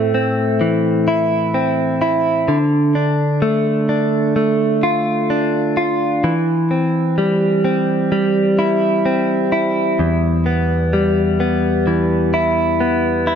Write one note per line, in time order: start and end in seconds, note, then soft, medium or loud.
0.00 2.48 A2 soft
0.00 3.17 A3 soft
0.00 0.13 C4 soft
0.00 1.07 E4 soft
0.14 1.53 C4 soft
0.61 2.48 E3 soft
1.08 2.00 E4 soft
1.54 2.58 C4 soft
2.02 2.58 E4 medium
2.48 6.23 D3 medium
2.95 3.88 D4 soft
3.42 4.35 A3 medium
3.89 5.29 D4 soft
4.36 6.33 A3 soft
4.83 5.76 F4 soft
5.30 6.33 D4 soft
5.77 6.33 F4 soft
6.24 9.99 E3 medium
6.71 7.63 C4 soft
7.18 8.11 G3 soft
7.65 9.04 C4 soft
8.12 10.93 G3 soft
8.59 9.52 E4 medium
9.06 10.08 C4 soft
9.52 12.33 E4 soft
9.99 13.35 E2 medium
10.46 11.39 B3 soft
10.93 13.35 G3 soft
11.40 12.79 B3 soft
11.87 13.35 E3 soft
12.34 13.27 E4 soft
12.80 13.35 B3 soft
13.27 13.35 E4 soft